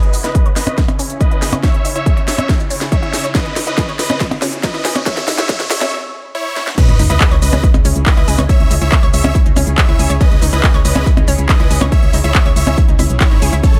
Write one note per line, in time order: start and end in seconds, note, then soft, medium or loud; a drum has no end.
0.00 5.88 C#3 medium
0.00 5.88 C#4 medium
0.00 5.88 E4 medium
0.00 0.16 B4 medium
0.00 5.88 C#5 medium
0.00 0.16 D#5 loud
0.00 closed hi-hat soft
0.00 riser medium
0.13 0.18 D#4 medium
0.13 open hi-hat loud
0.13 shaker medium
0.24 0.29 E4 medium
0.24 0.48 B4 medium
0.24 0.48 D#5 loud
0.24 snare soft
0.24 closed hi-hat medium
0.24 shaker soft
0.35 0.38 G#4 medium
0.35 kick loud
0.35 closed hi-hat medium
0.35 shaker soft
0.46 0.52 C#5 loud
0.46 closed hi-hat soft
0.56 0.81 B4 medium
0.56 0.81 D#5 medium
0.56 snare medium
0.56 open hi-hat loud
0.56 shaker medium
0.67 0.70 C#4 medium
0.67 closed hi-hat medium
0.67 percussion blips medium
0.67 shaker soft
0.78 0.80 E4 medium
0.78 kick loud
0.78 snare medium
0.78 closed hi-hat medium
0.78 shaker soft
0.88 0.91 D#4 medium
0.88 closed hi-hat soft
0.88 percussion blips medium
0.88 shaker soft
0.99 1.04 C#4 loud
0.99 open hi-hat loud
0.99 shaker medium
1.10 closed hi-hat soft
1.10 shaker soft
1.20 1.25 D#4 loud
1.20 1.53 B4 medium
1.20 1.53 D#5 medium
1.20 kick loud
1.20 closed hi-hat medium
1.20 shaker soft
1.31 1.38 E4 loud
1.31 closed hi-hat soft
1.42 1.49 G#4 medium
1.42 snare medium
1.42 open hi-hat loud
1.42 shaker medium
1.53 1.55 C#5 medium
1.53 closed hi-hat medium
1.53 percussion blips medium
1.53 shaker soft
1.63 1.66 C#4 medium
1.63 1.88 C#5 medium
1.63 1.88 E5 loud
1.63 kick loud
1.63 snare medium
1.63 closed hi-hat medium
1.63 shaker soft
1.74 closed hi-hat soft
1.85 1.89 D#4 medium
1.85 open hi-hat loud
1.85 shaker medium
1.96 2.00 E4 medium
1.96 2.20 C#5 medium
1.96 2.20 E5 loud
1.96 closed hi-hat medium
1.96 shaker soft
2.06 2.09 G#4 medium
2.06 kick loud
2.06 closed hi-hat medium
2.06 shaker soft
2.17 2.24 C#5 loud
2.17 closed hi-hat soft
2.28 2.52 C#5 medium
2.28 2.52 E5 medium
2.28 snare medium
2.28 open hi-hat loud
2.28 shaker medium
2.38 2.41 C#4 medium
2.38 closed hi-hat soft
2.38 percussion blips medium
2.38 shaker soft
2.49 2.52 E4 medium
2.49 kick loud
2.49 snare medium
2.49 closed hi-hat medium
2.49 shaker soft
2.60 2.62 D#4 medium
2.60 closed hi-hat soft
2.60 shaker soft
2.70 2.75 C#4 loud
2.70 open hi-hat loud
2.70 shaker medium
2.81 snare medium
2.81 closed hi-hat medium
2.81 shaker soft
2.92 2.96 D#4 loud
2.92 3.24 C#5 medium
2.92 3.24 E5 medium
2.92 kick loud
2.92 closed hi-hat soft
2.92 shaker soft
3.03 3.09 E4 loud
3.03 closed hi-hat soft
3.13 3.20 G#4 medium
3.13 snare medium
3.13 open hi-hat loud
3.13 shaker medium
3.24 3.27 C#5 medium
3.24 closed hi-hat medium
3.24 shaker soft
3.35 3.37 C#4 medium
3.35 3.59 B4 medium
3.35 3.59 D#5 loud
3.35 kick loud
3.35 snare medium
3.35 closed hi-hat medium
3.35 shaker soft
3.46 closed hi-hat soft
3.56 3.61 D#4 medium
3.56 snare medium
3.56 open hi-hat loud
3.56 shaker medium
3.67 3.71 E4 medium
3.67 3.91 B4 medium
3.67 3.91 D#5 loud
3.67 closed hi-hat medium
3.67 shaker soft
3.78 3.80 G#4 medium
3.78 kick loud
3.78 snare medium
3.78 closed hi-hat medium
3.78 shaker soft
3.88 3.95 C#5 loud
3.88 closed hi-hat soft
3.99 4.23 B4 medium
3.99 4.23 D#5 loud
3.99 snare medium
3.99 open hi-hat loud
3.99 shaker medium
4.10 4.13 C#4 medium
4.10 closed hi-hat soft
4.10 percussion blips medium
4.10 shaker soft
4.20 4.23 E4 medium
4.20 kick loud
4.20 snare medium
4.20 closed hi-hat soft
4.20 shaker soft
4.31 4.34 D#4 medium
4.31 closed hi-hat soft
4.31 percussion blips medium
4.31 shaker soft
4.42 4.46 C#4 loud
4.42 snare medium
4.42 open hi-hat loud
4.42 shaker medium
4.53 closed hi-hat medium
4.53 shaker soft
4.63 4.68 D#4 loud
4.63 4.96 B4 medium
4.63 4.96 D#5 medium
4.63 kick loud
4.63 snare medium
4.63 closed hi-hat soft
4.63 shaker soft
4.74 4.81 E4 loud
4.74 closed hi-hat soft
4.85 4.91 G#4 medium
4.85 snare medium
4.85 open hi-hat loud
4.85 shaker medium
4.96 4.98 C#5 medium
4.96 closed hi-hat medium
4.96 percussion blips medium
4.96 shaker soft
5.06 5.09 C#4 medium
5.06 5.30 C#5 medium
5.06 5.30 E5 loud
5.06 kick loud
5.06 snare medium
5.06 closed hi-hat medium
5.06 shaker soft
5.17 snare medium
5.17 closed hi-hat soft
5.28 5.32 D#4 medium
5.28 snare medium
5.28 open hi-hat loud
5.28 shaker medium
5.38 5.43 E4 medium
5.38 5.63 C#5 medium
5.38 5.63 E5 loud
5.38 snare medium
5.38 closed hi-hat medium
5.38 shaker soft
5.49 5.52 G#4 medium
5.49 kick loud
5.49 snare loud
5.49 closed hi-hat soft
5.49 shaker soft
5.60 5.67 C#5 loud
5.60 snare medium
5.60 closed hi-hat soft
5.70 5.95 C#5 medium
5.70 5.95 E5 loud
5.70 snare loud
5.70 open hi-hat loud
5.70 shaker medium
5.81 5.84 C#4 medium
5.81 snare medium
5.81 closed hi-hat medium
5.81 percussion blips medium
5.81 shaker soft
6.35 6.67 E4 medium
6.35 6.67 C#5 medium
6.56 snare medium
6.67 snare medium
6.78 6.80 C#4 medium
6.78 13.60 C#4 medium
6.78 13.80 E4 medium
6.78 13.59 G#4 medium
6.78 7.02 B4 medium
6.78 13.59 C#5 medium
6.78 7.02 D#5 loud
6.78 kick loud
6.78 closed hi-hat medium
6.78 crash loud
6.78 sub drop medium
6.78 shaker soft
6.89 6.97 C#2 medium
6.89 closed hi-hat soft
6.99 7.08 C#2 loud
6.99 7.04 D#4 medium
6.99 open hi-hat loud
6.99 shaker medium
7.10 7.18 C#2 loud
7.10 7.14 E4 medium
7.10 7.34 B4 medium
7.10 7.34 D#5 loud
7.10 closed hi-hat medium
7.10 shaker soft
7.21 7.23 G#4 medium
7.21 kick loud
7.21 clap loud
7.21 closed hi-hat medium
7.21 shaker soft
7.31 7.40 C#2 medium
7.31 7.38 C#5 loud
7.31 closed hi-hat soft
7.42 7.50 C#2 loud
7.42 7.66 B4 medium
7.42 7.66 D#5 loud
7.42 open hi-hat loud
7.42 shaker medium
7.53 7.61 C#2 medium
7.53 7.55 C#4 medium
7.53 closed hi-hat medium
7.53 percussion blips medium
7.53 shaker soft
7.63 7.66 E4 medium
7.63 kick loud
7.63 closed hi-hat medium
7.63 shaker soft
7.74 7.83 C#2 medium
7.74 7.77 D#4 medium
7.74 closed hi-hat soft
7.74 percussion blips medium
7.74 shaker soft
7.85 7.93 C#2 loud
7.85 7.89 C#4 loud
7.85 open hi-hat loud
7.85 shaker medium
7.96 8.04 C#2 medium
7.96 closed hi-hat medium
7.96 shaker soft
8.06 8.11 D#4 loud
8.06 8.39 B4 medium
8.06 8.39 D#5 loud
8.06 kick loud
8.06 clap loud
8.06 closed hi-hat medium
8.06 shaker soft
8.17 8.26 C#2 medium
8.17 8.24 E4 loud
8.17 closed hi-hat soft
8.28 8.36 C#2 loud
8.28 8.34 G#4 medium
8.28 open hi-hat loud
8.28 shaker medium
8.39 8.47 C#2 medium
8.39 8.41 C#5 medium
8.39 closed hi-hat medium
8.39 percussion blips medium
8.39 shaker soft
8.49 8.52 C#4 medium
8.49 8.73 C#5 medium
8.49 8.74 E5 loud
8.49 kick loud
8.49 closed hi-hat medium
8.49 shaker soft
8.60 8.68 C#2 medium
8.60 closed hi-hat soft
8.71 8.79 C#2 loud
8.71 8.75 D#4 medium
8.71 open hi-hat loud
8.71 shaker medium
8.81 8.90 C#2 medium
8.81 8.86 E4 medium
8.81 9.06 C#5 medium
8.81 9.06 E5 loud
8.81 closed hi-hat medium
8.81 shaker soft
8.92 8.95 G#4 medium
8.92 kick loud
8.92 clap loud
8.92 closed hi-hat medium
8.92 shaker soft
9.03 9.11 C#2 medium
9.03 9.09 C#5 loud
9.03 closed hi-hat soft
9.14 9.22 C#2 loud
9.14 9.38 C#5 medium
9.14 9.38 E5 medium
9.14 open hi-hat loud
9.14 shaker medium
9.24 9.33 C#2 medium
9.24 9.27 C#4 medium
9.24 closed hi-hat medium
9.24 percussion blips medium
9.24 shaker soft
9.35 9.38 E4 medium
9.35 kick loud
9.35 closed hi-hat medium
9.35 shaker soft
9.46 9.54 C#2 medium
9.46 9.48 D#4 medium
9.46 closed hi-hat soft
9.46 shaker soft
9.56 9.65 C#2 loud
9.56 9.61 C#4 loud
9.56 open hi-hat loud
9.56 percussion blips medium
9.56 shaker medium
9.67 9.75 C#2 medium
9.67 closed hi-hat medium
9.67 shaker soft
9.78 9.82 D#4 loud
9.78 10.10 C#5 medium
9.78 10.10 E5 medium
9.78 kick loud
9.78 clap loud
9.78 closed hi-hat medium
9.78 shaker soft
9.88 9.97 C#2 medium
9.88 9.95 E4 loud
9.88 closed hi-hat soft
9.99 10.08 C#2 loud
9.99 10.06 G#4 medium
9.99 open hi-hat loud
9.99 shaker medium
10.10 10.18 C#2 loud
10.10 10.13 C#5 medium
10.10 closed hi-hat medium
10.10 shaker soft
10.21 10.23 C#4 medium
10.21 10.45 B4 medium
10.21 10.45 D#5 loud
10.21 kick loud
10.21 closed hi-hat medium
10.21 shaker soft
10.31 10.40 C#2 medium
10.31 closed hi-hat soft
10.42 10.50 C#2 loud
10.42 10.46 D#4 medium
10.42 open hi-hat loud
10.42 shaker medium
10.53 10.61 C#2 medium
10.53 10.57 E4 medium
10.53 10.77 B4 medium
10.53 10.77 D#5 loud
10.53 closed hi-hat medium
10.53 shaker soft
10.64 10.66 G#4 medium
10.64 kick loud
10.64 clap loud
10.64 closed hi-hat soft
10.64 shaker soft
10.74 10.83 C#2 medium
10.74 10.81 C#5 loud
10.74 closed hi-hat soft
10.85 10.93 C#2 loud
10.85 11.09 B4 medium
10.85 11.09 D#5 medium
10.85 open hi-hat loud
10.85 shaker medium
10.96 11.04 C#2 medium
10.96 10.98 C#4 medium
10.96 closed hi-hat medium
10.96 percussion blips medium
10.96 shaker soft
11.06 11.09 E4 medium
11.06 kick loud
11.06 closed hi-hat soft
11.06 shaker soft
11.17 11.25 C#2 medium
11.17 11.20 D#4 medium
11.17 closed hi-hat soft
11.17 percussion blips medium
11.17 shaker soft
11.28 11.36 C#2 loud
11.28 11.32 C#4 loud
11.28 open hi-hat loud
11.28 shaker medium
11.39 11.47 C#2 medium
11.39 closed hi-hat medium
11.39 shaker soft
11.49 11.54 D#4 loud
11.49 11.82 B4 medium
11.49 11.82 D#5 medium
11.49 kick loud
11.49 clap loud
11.49 closed hi-hat soft
11.49 shaker soft
11.60 11.68 C#2 medium
11.60 11.66 E4 loud
11.60 closed hi-hat soft
11.71 11.79 C#2 loud
11.71 11.77 G#4 medium
11.71 open hi-hat loud
11.71 shaker medium
11.81 11.90 C#2 medium
11.81 11.84 C#5 medium
11.81 percussion blips medium
11.81 shaker soft
11.92 11.95 C#4 medium
11.92 12.16 C#5 medium
11.92 12.16 E5 loud
11.92 kick loud
11.92 closed hi-hat medium
11.92 shaker soft
12.03 12.11 C#2 medium
12.03 closed hi-hat soft
12.13 12.22 C#2 medium
12.13 12.18 D#4 medium
12.13 open hi-hat loud
12.13 shaker medium
12.24 12.32 C#2 medium
12.24 12.29 E4 medium
12.24 12.49 C#5 medium
12.24 12.48 E5 loud
12.24 closed hi-hat soft
12.24 shaker soft
12.35 12.38 G#4 medium
12.35 kick loud
12.35 clap loud
12.35 closed hi-hat soft
12.35 shaker soft
12.46 12.54 C#2 medium
12.46 12.52 C#5 loud
12.46 closed hi-hat soft
12.56 12.65 C#2 loud
12.56 12.81 C#5 medium
12.56 12.81 E5 loud
12.56 open hi-hat loud
12.56 shaker medium
12.67 12.75 C#2 medium
12.67 12.70 C#4 medium
12.67 percussion blips medium
12.67 shaker soft
12.78 12.80 E4 medium
12.78 kick loud
12.78 closed hi-hat medium
12.78 shaker soft
12.88 12.97 C#2 medium
12.88 12.91 D#4 medium
12.88 closed hi-hat soft
12.88 shaker soft
12.99 13.08 C#2 loud
12.99 13.06 E4 loud
12.99 open hi-hat loud
12.99 percussion blips medium
12.99 shaker medium
13.10 13.18 B1 medium
13.10 closed hi-hat soft
13.10 shaker soft
13.20 13.23 E4 medium
13.20 13.53 E4 medium
13.20 13.53 C#5 medium
13.20 kick loud
13.20 clap loud
13.20 closed hi-hat soft
13.20 shaker soft
13.31 13.40 G#1 medium
13.31 13.36 D#4 medium
13.31 closed hi-hat soft
13.42 13.50 C#2 loud
13.42 13.49 G#4 medium
13.42 open hi-hat loud
13.42 shaker medium
13.53 13.61 C#2 medium
13.53 13.57 E4 medium
13.53 closed hi-hat medium
13.53 shaker soft
13.63 13.80 A3 medium
13.63 13.66 C#4 medium
13.63 13.80 A4 medium
13.63 13.80 C#5 medium
13.63 13.80 C#5 loud
13.63 kick loud
13.63 closed hi-hat medium
13.63 shaker soft
13.74 13.80 A1 medium
13.74 closed hi-hat soft